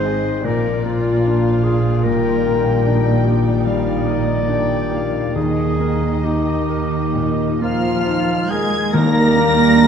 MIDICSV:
0, 0, Header, 1, 13, 480
1, 0, Start_track
1, 0, Key_signature, -3, "major"
1, 0, Tempo, 809717
1, 1223, Time_signature, 4, 2, 24, 8
1, 2667, Tempo, 872093
1, 3627, Tempo, 911854
1, 4587, Tempo, 848656
1, 5610, End_track
2, 0, Start_track
2, 0, Title_t, "Violin section"
2, 0, Program_c, 0, 48
2, 0, Note_on_c, 0, 75, 64
2, 257, Note_on_c, 0, 74, 62
2, 266, Note_off_c, 0, 75, 0
2, 3112, Note_off_c, 0, 74, 0
2, 3138, Note_on_c, 0, 75, 60
2, 4333, Note_off_c, 0, 75, 0
2, 4361, Note_on_c, 0, 89, 88
2, 4815, Note_off_c, 0, 89, 0
2, 4831, Note_on_c, 0, 92, 91
2, 5075, Note_off_c, 0, 92, 0
2, 5075, Note_on_c, 0, 94, 114
2, 5610, Note_off_c, 0, 94, 0
2, 5610, End_track
3, 0, Start_track
3, 0, Title_t, "Flute"
3, 0, Program_c, 1, 73
3, 4352, Note_on_c, 1, 77, 78
3, 4835, Note_on_c, 1, 80, 71
3, 4844, Note_off_c, 1, 77, 0
3, 5070, Note_off_c, 1, 80, 0
3, 5074, Note_on_c, 1, 82, 100
3, 5610, Note_off_c, 1, 82, 0
3, 5610, End_track
4, 0, Start_track
4, 0, Title_t, "Violin section"
4, 0, Program_c, 2, 48
4, 25, Note_on_c, 2, 75, 62
4, 267, Note_off_c, 2, 75, 0
4, 269, Note_on_c, 2, 74, 61
4, 734, Note_off_c, 2, 74, 0
4, 741, Note_on_c, 2, 77, 66
4, 1221, Note_on_c, 2, 79, 79
4, 1222, Note_off_c, 2, 77, 0
4, 2154, Note_off_c, 2, 79, 0
4, 2173, Note_on_c, 2, 77, 65
4, 2420, Note_off_c, 2, 77, 0
4, 2421, Note_on_c, 2, 75, 56
4, 2662, Note_on_c, 2, 79, 61
4, 2668, Note_off_c, 2, 75, 0
4, 2898, Note_off_c, 2, 79, 0
4, 2903, Note_on_c, 2, 77, 55
4, 3140, Note_off_c, 2, 77, 0
4, 3140, Note_on_c, 2, 75, 59
4, 4834, Note_off_c, 2, 75, 0
4, 5071, Note_on_c, 2, 67, 76
4, 5073, Note_on_c, 2, 74, 75
4, 5610, Note_off_c, 2, 67, 0
4, 5610, Note_off_c, 2, 74, 0
4, 5610, End_track
5, 0, Start_track
5, 0, Title_t, "Clarinet"
5, 0, Program_c, 3, 71
5, 0, Note_on_c, 3, 72, 100
5, 264, Note_on_c, 3, 70, 87
5, 273, Note_off_c, 3, 72, 0
5, 498, Note_off_c, 3, 70, 0
5, 502, Note_on_c, 3, 65, 89
5, 969, Note_on_c, 3, 68, 77
5, 978, Note_off_c, 3, 65, 0
5, 1206, Note_on_c, 3, 70, 95
5, 1215, Note_off_c, 3, 68, 0
5, 2000, Note_off_c, 3, 70, 0
5, 2162, Note_on_c, 3, 74, 93
5, 3112, Note_off_c, 3, 74, 0
5, 3137, Note_on_c, 3, 68, 90
5, 3625, Note_on_c, 3, 67, 68
5, 3633, Note_off_c, 3, 68, 0
5, 4346, Note_off_c, 3, 67, 0
5, 4350, Note_on_c, 3, 65, 76
5, 4836, Note_on_c, 3, 68, 73
5, 4845, Note_off_c, 3, 65, 0
5, 5077, Note_off_c, 3, 68, 0
5, 5082, Note_on_c, 3, 70, 106
5, 5610, Note_off_c, 3, 70, 0
5, 5610, End_track
6, 0, Start_track
6, 0, Title_t, "Oboe"
6, 0, Program_c, 4, 68
6, 4349, Note_on_c, 4, 65, 72
6, 4808, Note_off_c, 4, 65, 0
6, 4833, Note_on_c, 4, 68, 79
6, 5082, Note_on_c, 4, 70, 97
6, 5091, Note_off_c, 4, 68, 0
6, 5610, Note_off_c, 4, 70, 0
6, 5610, End_track
7, 0, Start_track
7, 0, Title_t, "Harp"
7, 0, Program_c, 5, 46
7, 0, Note_on_c, 5, 44, 58
7, 0, Note_on_c, 5, 60, 50
7, 0, Note_on_c, 5, 68, 49
7, 23, Note_on_c, 5, 63, 52
7, 265, Note_on_c, 5, 46, 63
7, 285, Note_off_c, 5, 44, 0
7, 285, Note_off_c, 5, 60, 0
7, 285, Note_off_c, 5, 63, 0
7, 285, Note_off_c, 5, 68, 0
7, 499, Note_on_c, 5, 58, 51
7, 736, Note_on_c, 5, 65, 53
7, 1207, Note_off_c, 5, 46, 0
7, 1214, Note_on_c, 5, 46, 59
7, 1238, Note_off_c, 5, 65, 0
7, 1451, Note_off_c, 5, 58, 0
7, 1458, Note_on_c, 5, 58, 52
7, 1929, Note_on_c, 5, 63, 48
7, 2892, Note_off_c, 5, 63, 0
7, 2898, Note_on_c, 5, 63, 44
7, 3135, Note_on_c, 5, 51, 54
7, 3155, Note_off_c, 5, 46, 0
7, 3373, Note_off_c, 5, 63, 0
7, 3380, Note_on_c, 5, 63, 49
7, 3688, Note_off_c, 5, 58, 0
7, 3851, Note_off_c, 5, 63, 0
7, 3857, Note_on_c, 5, 63, 47
7, 4343, Note_off_c, 5, 63, 0
7, 4349, Note_on_c, 5, 63, 45
7, 4829, Note_off_c, 5, 63, 0
7, 4836, Note_on_c, 5, 63, 45
7, 5073, Note_off_c, 5, 51, 0
7, 5080, Note_on_c, 5, 51, 73
7, 5317, Note_on_c, 5, 62, 71
7, 5610, Note_off_c, 5, 51, 0
7, 5610, Note_off_c, 5, 62, 0
7, 5610, Note_off_c, 5, 63, 0
7, 5610, End_track
8, 0, Start_track
8, 0, Title_t, "Viola section"
8, 0, Program_c, 6, 48
8, 0, Note_on_c, 6, 60, 64
8, 0, Note_on_c, 6, 68, 60
8, 246, Note_off_c, 6, 60, 0
8, 246, Note_off_c, 6, 68, 0
8, 266, Note_on_c, 6, 58, 62
8, 266, Note_on_c, 6, 65, 64
8, 1217, Note_on_c, 6, 55, 61
8, 1222, Note_off_c, 6, 58, 0
8, 1695, Note_off_c, 6, 65, 0
8, 1695, Note_on_c, 6, 63, 65
8, 3132, Note_off_c, 6, 63, 0
8, 3136, Note_off_c, 6, 55, 0
8, 3139, Note_on_c, 6, 58, 55
8, 3139, Note_on_c, 6, 63, 55
8, 4936, Note_off_c, 6, 58, 0
8, 4936, Note_off_c, 6, 63, 0
8, 5082, Note_on_c, 6, 55, 81
8, 5082, Note_on_c, 6, 63, 81
8, 5610, Note_off_c, 6, 55, 0
8, 5610, Note_off_c, 6, 63, 0
8, 5610, End_track
9, 0, Start_track
9, 0, Title_t, "Felt piano"
9, 0, Program_c, 7, 0
9, 0, Control_c, 7, 64, 127
9, 0, Note_on_c, 7, 44, 61
9, 0, Note_on_c, 7, 60, 49
9, 0, Note_on_c, 7, 63, 50
9, 23, Note_on_c, 7, 68, 49
9, 171, Note_off_c, 7, 63, 0
9, 244, Note_off_c, 7, 44, 0
9, 264, Note_on_c, 7, 46, 61
9, 266, Note_off_c, 7, 68, 0
9, 278, Control_c, 7, 64, 0
9, 280, Note_off_c, 7, 60, 0
9, 369, Control_c, 7, 64, 127
9, 504, Note_on_c, 7, 58, 45
9, 751, Note_on_c, 7, 62, 49
9, 886, Note_off_c, 7, 58, 0
9, 983, Note_on_c, 7, 65, 49
9, 1131, Note_off_c, 7, 62, 0
9, 1197, Note_off_c, 7, 46, 0
9, 1220, Note_on_c, 7, 46, 59
9, 1223, Note_off_c, 7, 65, 0
9, 1235, Control_c, 7, 64, 0
9, 1325, Control_c, 7, 64, 127
9, 1466, Note_on_c, 7, 58, 46
9, 1695, Note_on_c, 7, 62, 52
9, 1840, Note_off_c, 7, 58, 0
9, 1925, Note_on_c, 7, 67, 47
9, 2077, Note_off_c, 7, 62, 0
9, 2149, Note_off_c, 7, 46, 0
9, 2169, Note_on_c, 7, 55, 49
9, 2318, Note_off_c, 7, 67, 0
9, 2408, Note_on_c, 7, 58, 45
9, 2566, Note_off_c, 7, 55, 0
9, 2661, Note_on_c, 7, 62, 48
9, 2801, Note_off_c, 7, 58, 0
9, 2895, Note_on_c, 7, 67, 45
9, 3039, Note_off_c, 7, 62, 0
9, 3136, Note_off_c, 7, 67, 0
9, 3139, Note_on_c, 7, 39, 51
9, 3151, Control_c, 7, 64, 0
9, 3232, Control_c, 7, 64, 127
9, 3382, Note_on_c, 7, 58, 45
9, 3624, Note_on_c, 7, 63, 44
9, 3766, Note_off_c, 7, 58, 0
9, 3859, Note_on_c, 7, 70, 44
9, 4005, Note_off_c, 7, 63, 0
9, 4086, Note_off_c, 7, 39, 0
9, 4102, Note_on_c, 7, 46, 42
9, 4255, Note_off_c, 7, 70, 0
9, 4348, Note_on_c, 7, 58, 44
9, 4494, Note_off_c, 7, 46, 0
9, 4585, Note_on_c, 7, 63, 47
9, 4732, Note_off_c, 7, 58, 0
9, 4837, Note_on_c, 7, 70, 46
9, 4978, Note_off_c, 7, 63, 0
9, 5075, Note_on_c, 7, 39, 80
9, 5078, Note_off_c, 7, 70, 0
9, 5087, Control_c, 7, 64, 0
9, 5169, Control_c, 7, 64, 127
9, 5313, Note_on_c, 7, 58, 66
9, 5546, Note_on_c, 7, 62, 64
9, 5610, Note_off_c, 7, 39, 0
9, 5610, Note_off_c, 7, 58, 0
9, 5610, Note_off_c, 7, 62, 0
9, 5610, End_track
10, 0, Start_track
10, 0, Title_t, "French horn section"
10, 0, Program_c, 8, 60
10, 0, Note_on_c, 8, 56, 59
10, 0, Note_on_c, 8, 63, 62
10, 248, Note_off_c, 8, 63, 0
10, 264, Note_on_c, 8, 65, 62
10, 267, Note_on_c, 8, 53, 68
10, 268, Note_off_c, 8, 56, 0
10, 1133, Note_off_c, 8, 53, 0
10, 1234, Note_on_c, 8, 51, 66
10, 3122, Note_off_c, 8, 51, 0
10, 3137, Note_off_c, 8, 65, 0
10, 3138, Note_on_c, 8, 51, 59
10, 3141, Note_on_c, 8, 63, 54
10, 4332, Note_off_c, 8, 51, 0
10, 4334, Note_off_c, 8, 63, 0
10, 4347, Note_on_c, 8, 53, 80
10, 4807, Note_off_c, 8, 53, 0
10, 4830, Note_on_c, 8, 56, 81
10, 5074, Note_off_c, 8, 56, 0
10, 5081, Note_on_c, 8, 58, 98
10, 5610, Note_off_c, 8, 58, 0
10, 5610, End_track
11, 0, Start_track
11, 0, Title_t, "Cello section"
11, 0, Program_c, 10, 48
11, 0, Note_on_c, 10, 44, 65
11, 248, Note_off_c, 10, 44, 0
11, 266, Note_on_c, 10, 46, 67
11, 3136, Note_on_c, 10, 51, 60
11, 3138, Note_off_c, 10, 46, 0
11, 4332, Note_off_c, 10, 51, 0
11, 4353, Note_on_c, 10, 53, 76
11, 4811, Note_off_c, 10, 53, 0
11, 4834, Note_on_c, 10, 56, 83
11, 5076, Note_off_c, 10, 56, 0
11, 5080, Note_on_c, 10, 58, 99
11, 5610, Note_off_c, 10, 58, 0
11, 5610, End_track
12, 0, Start_track
12, 0, Title_t, "Timpani"
12, 0, Program_c, 11, 47
12, 5080, Note_on_c, 11, 51, 111
12, 5610, Note_off_c, 11, 51, 0
12, 5610, End_track
13, 0, Start_track
13, 0, Title_t, "Double bass section"
13, 0, Program_c, 12, 48
13, 0, Note_on_c, 12, 32, 63
13, 246, Note_off_c, 12, 32, 0
13, 260, Note_on_c, 12, 34, 69
13, 3130, Note_on_c, 12, 39, 58
13, 3135, Note_off_c, 12, 34, 0
13, 4932, Note_off_c, 12, 39, 0
13, 5074, Note_on_c, 12, 39, 80
13, 5610, Note_off_c, 12, 39, 0
13, 5610, End_track
0, 0, End_of_file